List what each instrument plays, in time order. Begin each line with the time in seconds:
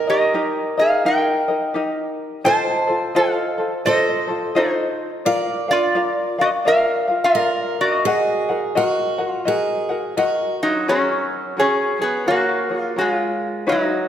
Already playing: steel-string acoustic guitar A#4
0.07 ukulele D#4 A#4 D#5, resonator guitar played with a steel bar G4 D#5
0.34 ukulele D#4 G4 A#4 D#5
0.77 ukulele D#4 A#4 D#5, resonator guitar played with a steel bar G#4 F5
1.05 ukulele D#4 G4 A#4 D#5, resonator guitar played with a steel bar A#4 G5
1.48 ukulele D#4 A#4 D#5
1.74 ukulele D#4 G4 A#4 D#5
2.44 ukulele F4 A4 C5 D#5, steel-string acoustic guitar C5, resonator guitar played with a steel bar C5 A5
2.87 ukulele F4 A4 C5
3.15 ukulele F4 A4 C5 D#5, resonator guitar played with a steel bar A4 F5
3.58 ukulele F4 A4 C5
3.85 ukulele F4 A4 C5 D#5, resonator guitar played with a steel bar A4 D#5, steel-string acoustic guitar C5
4.27 ukulele F4 A4 C5
4.55 resonator guitar played with a steel bar D#4 C5, ukulele F4 A4 C5 D#5
5.25 ukulele F4 A#4 D5 F5, steel-string acoustic guitar D5
5.68 ukulele F4 A#4 F5, resonator guitar played with a steel bar D5
5.72 resonator guitar played with a steel bar F4
5.95 ukulele F4 A#4 D5 F5
6.38 resonator guitar played with a steel bar F#4 D#5, ukulele A#4 F5
6.65 ukulele F4 A#4 D5 F5, resonator guitar played with a steel bar A#4 F5
7.08 ukulele F4 A#4 F5
7.24 resonator guitar played with a steel bar F4 D5
7.35 steel-string acoustic guitar A#4, ukulele A#4 F5
7.81 resonator guitar played with a steel bar F#4 D#5
8.05 ukulele F#4 A#4 D#5 F#5, steel-string acoustic guitar G#4
8.49 ukulele F#4 A#4 F#5
8.75 ukulele F#4 A#4 D#5 F#5, steel-string acoustic guitar F#4
9.18 ukulele F#4 A#4 F#5
9.27 steel-string acoustic guitar F4
9.45 ukulele F#4 A#4 D#5 F#5, steel-string acoustic guitar G#4
9.89 ukulele F#4 A#4 F#5
10.17 steel-string acoustic guitar F#4, ukulele F#4 A#4 D#5 F#5
10.63 resonator guitar played with a steel bar F#3 D#4, steel-string acoustic guitar F4
10.88 resonator guitar played with a steel bar F#3 C#4, ukulele F#4 G#4 A#4 C#5
11.57 ukulele F#4 G#4 A#4 C#5, resonator guitar played with a steel bar G#4
11.61 resonator guitar played with a steel bar C#4
11.99 ukulele F#4 G#4 C#5, resonator guitar played with a steel bar G#4
12.03 resonator guitar played with a steel bar B3
12.26 ukulele F#4 G#4 A#4 C#5, resonator guitar played with a steel bar F#4
12.30 resonator guitar played with a steel bar A#3
12.69 ukulele F#4 G#4 C#5
12.79 resonator guitar played with a steel bar F4
12.96 resonator guitar played with a steel bar F#4, ukulele G#4 A#4 C#5
13.01 resonator guitar played with a steel bar G#3
13.09 resonator guitar played with a steel bar F4
13.67 ukulele D#4 F#4 B4 C#5, resonator guitar played with a steel bar D#4
13.72 resonator guitar played with a steel bar F#3